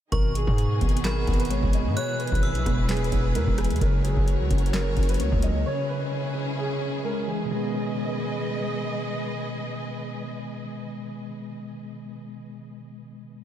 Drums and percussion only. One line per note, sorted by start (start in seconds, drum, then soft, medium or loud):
0.12 kick loud
0.12 closed hi-hat medium
0.35 closed hi-hat medium
0.47 kick loud
0.58 closed hi-hat medium
0.81 kick medium
0.81 closed hi-hat medium
0.89 closed hi-hat medium
0.97 closed hi-hat medium
1.04 snare loud
1.04 clap medium
1.04 closed hi-hat medium
1.27 kick medium
1.27 closed hi-hat soft
1.34 closed hi-hat medium
1.40 closed hi-hat medium
1.45 closed hi-hat medium
1.50 closed hi-hat medium
1.63 kick medium
1.73 closed hi-hat medium
1.97 closed hi-hat medium
2.20 closed hi-hat medium
2.27 closed hi-hat medium
2.32 kick loud
2.32 closed hi-hat medium
2.43 closed hi-hat soft
2.55 closed hi-hat medium
2.66 kick medium
2.66 cross-stick medium
2.66 closed hi-hat medium
2.89 snare loud
2.89 clap medium
2.89 closed hi-hat medium
2.97 closed hi-hat medium
3.04 closed hi-hat medium
3.12 kick medium
3.12 closed hi-hat medium
3.35 closed hi-hat medium
3.47 kick medium
3.58 cross-stick loud
3.58 closed hi-hat medium
3.58 open hi-hat medium
3.64 closed hi-hat medium
3.71 closed hi-hat medium
3.76 closed hi-hat medium
3.81 kick loud
3.81 closed hi-hat medium
4.05 closed hi-hat medium
4.17 kick loud
4.28 closed hi-hat medium
4.50 kick medium
4.50 closed hi-hat medium
4.58 closed hi-hat medium
4.66 closed hi-hat medium
4.74 snare loud
4.74 clap medium
4.74 closed hi-hat medium
4.97 kick medium
4.97 closed hi-hat soft
5.03 closed hi-hat medium
5.09 closed hi-hat medium
5.14 closed hi-hat medium
5.20 closed hi-hat medium
5.32 kick medium
5.42 closed hi-hat medium